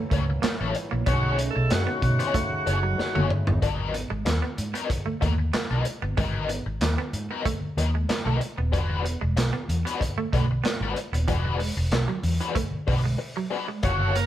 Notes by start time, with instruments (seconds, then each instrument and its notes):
Already playing: harmonium E3 F#3 A#3 E4
0.10 fingered electric bass C#2, clean electric guitar A3, overdriven electric guitar A#3 E4 A4 C#5, kick, closed hi-hat
0.30 muted overdriven electric guitar stroke
0.42 clean electric guitar A#3, muted fingered electric bass stroke, muted overdriven electric guitar stroke, snare, clap, closed hi-hat
0.60 fingered electric bass A1, overdriven electric guitar A#3 E4 A4 C#5, muted clean electric guitar stroke
0.75 muted overdriven electric guitar stroke, closed hi-hat
0.91 fingered electric bass A#1, clean electric guitar A#3, muted overdriven electric guitar stroke
1.06 fingered electric bass B1, harmonium C#3 G#3 A3 D#4, overdriven electric guitar A3 D#4 G#4 C#5, clean electric guitar B3, tonewheel organ F#4, kick, closed hi-hat
1.23 muted clean electric guitar stroke
1.38 clean electric guitar C#4, closed hi-hat
1.51 tonewheel organ A4
1.56 fingered electric bass B1, muted overdriven electric guitar stroke
1.70 fingered electric bass F#2, tonewheel organ F#4, muted overdriven electric guitar stroke, snare, clap, closed hi-hat
1.87 clean electric guitar B3, muted overdriven electric guitar stroke
2.02 fingered electric bass B2, tonewheel organ F#4, muted clean electric guitar stroke, kick, closed hi-hat
2.19 overdriven electric guitar A3 D#4 G#4 C#5, clean electric guitar B3, closed hi-hat
2.34 clean electric guitar A3, muted overdriven electric guitar stroke, kick, closed hi-hat
2.52 muted fingered electric bass stroke
2.66 fingered electric bass F#1, overdriven electric guitar A3 D#4 G#4 C#5, muted clean electric guitar stroke, closed hi-hat
2.83 clean electric guitar F#3, muted overdriven electric guitar stroke
2.98 muted overdriven electric guitar stroke, muted fingered electric bass stroke, snare
3.15 fingered electric bass F#1, clean electric guitar A3, overdriven electric guitar A3 D#4 G#4 C#5, high tom
3.30 muted clean electric guitar stroke, muted overdriven electric guitar stroke, mid tom
3.47 fingered electric bass G1, clean electric guitar B3, muted overdriven electric guitar stroke, floor tom
3.62 fingered electric bass G#1, overdriven electric guitar F3 A#3 D4 A4, kick, closed hi-hat
3.74 overdriven electric guitar F#3 B3 D#4 A#4
3.79 muted clean electric guitar stroke
3.94 clean electric guitar B3, closed hi-hat
4.10 fingered electric bass G#1, clean electric guitar G#3, muted overdriven electric guitar stroke
4.25 fingered electric bass D#2, muted overdriven electric guitar stroke, snare, clap, closed hi-hat
4.42 clean electric guitar B3, muted overdriven electric guitar stroke
4.57 fingered electric bass G#2, muted clean electric guitar stroke, closed hi-hat
4.74 overdriven electric guitar F#3 B3 D#4 A#4, clean electric guitar B3, closed hi-hat
4.89 muted clean electric guitar stroke, muted overdriven electric guitar stroke, kick, closed hi-hat
5.06 clean electric guitar A3, muted fingered electric bass stroke
5.21 fingered electric bass D#2, overdriven electric guitar F#3 B3 D#4 A#4, clean electric guitar A3, kick, closed hi-hat
5.38 muted overdriven electric guitar stroke
5.53 clean electric guitar B3, muted overdriven electric guitar stroke, snare, clap, closed hi-hat
5.71 fingered electric bass B1, overdriven electric guitar F#3 B3 D#4 A#4, muted clean electric guitar stroke
5.85 muted overdriven electric guitar stroke, closed hi-hat
6.02 fingered electric bass G1, clean electric guitar B3, muted overdriven electric guitar stroke
6.17 fingered electric bass G#1, overdriven electric guitar F#3 B3 D#4 A#4, clean electric guitar G#3, kick, closed hi-hat
6.34 muted clean electric guitar stroke
6.49 clean electric guitar B3, closed hi-hat
6.66 fingered electric bass G#1, muted overdriven electric guitar stroke
6.81 fingered electric bass D#2, muted overdriven electric guitar stroke, snare, clap, closed hi-hat
6.98 clean electric guitar B3, muted overdriven electric guitar stroke
7.13 fingered electric bass G#2, muted clean electric guitar stroke, closed hi-hat
7.31 overdriven electric guitar F#3 B3 D#4 A#4, clean electric guitar B3
7.45 clean electric guitar A3, muted overdriven electric guitar stroke, kick, closed hi-hat
7.62 muted fingered electric bass stroke
7.77 fingered electric bass D#2, overdriven electric guitar F#3 B3 D#4 A#4, muted clean electric guitar stroke, closed hi-hat
7.94 clean electric guitar G#3, muted overdriven electric guitar stroke
8.09 muted fingered electric bass stroke, muted overdriven electric guitar stroke, snare, clap, closed hi-hat
8.25 fingered electric bass B1, overdriven electric guitar F#3 B3 D#4 A#4, clean electric guitar A3
8.40 muted overdriven electric guitar stroke, muted clean electric guitar stroke, closed hi-hat
8.58 fingered electric bass D#1, clean electric guitar B3, muted overdriven electric guitar stroke
8.72 fingered electric bass E1, overdriven electric guitar G#3 D4 F#4 B4, kick, closed hi-hat
8.90 muted clean electric guitar stroke
9.05 clean electric guitar B3, closed hi-hat
9.21 fingered electric bass E1, clean electric guitar G#3, muted overdriven electric guitar stroke
9.37 fingered electric bass B1, muted overdriven electric guitar stroke, snare, clap, closed hi-hat
9.53 clean electric guitar B3, muted overdriven electric guitar stroke
9.69 fingered electric bass E2, muted clean electric guitar stroke, closed hi-hat
9.85 overdriven electric guitar G#3 D4 F#4 B4, clean electric guitar B3, closed hi-hat
10.01 muted clean electric guitar stroke, muted overdriven electric guitar stroke, kick, closed hi-hat
10.17 clean electric guitar A3, muted fingered electric bass stroke
10.33 fingered electric bass B1, overdriven electric guitar G#3 D4 F#4 B4, clean electric guitar A3, kick, closed hi-hat
10.51 muted overdriven electric guitar stroke
10.64 clean electric guitar B3, muted overdriven electric guitar stroke, snare, clap, closed hi-hat
10.80 fingered electric bass G#1, overdriven electric guitar G#3 D4 F#4 B4, muted clean electric guitar stroke
10.96 muted overdriven electric guitar stroke, closed hi-hat
11.12 fingered electric bass D#1, clean electric guitar B3, muted overdriven electric guitar stroke, closed hi-hat
11.28 fingered electric bass E1, clean electric guitar E3, overdriven electric guitar G#3 D4 F#4 B4, kick, closed hi-hat
11.45 muted clean electric guitar stroke
11.59 clean electric guitar G#3, open hi-hat
11.77 fingered electric bass E1, muted overdriven electric guitar stroke
11.91 fingered electric bass B1, muted overdriven electric guitar stroke, snare, clap, closed hi-hat
12.08 clean electric guitar F#3, muted overdriven electric guitar stroke
12.23 fingered electric bass E2, muted clean electric guitar stroke, open hi-hat
12.40 clean electric guitar E3, overdriven electric guitar G#3 D4 F#4 B4, closed hi-hat
12.55 clean electric guitar A3, muted overdriven electric guitar stroke, kick, closed hi-hat
12.72 muted fingered electric bass stroke
12.87 fingered electric bass B1, overdriven electric guitar G#3 D4 F#4 B4, muted clean electric guitar stroke, kick, open hi-hat
13.03 clean electric guitar G#3, muted overdriven electric guitar stroke
13.18 muted overdriven electric guitar stroke
13.36 clean electric guitar F#3, muted overdriven electric guitar stroke
13.50 overdriven electric guitar G#3 D4 F#4 B4, muted clean electric guitar stroke
13.68 clean electric guitar G#3, muted overdriven electric guitar stroke
13.83 fingered electric bass F#1, overdriven electric guitar A#3 E4 A4 C#5, tonewheel organ F#4, kick, closed hi-hat
14.00 muted clean electric guitar stroke
14.15 clean electric guitar A#3, tonewheel organ A#4, closed hi-hat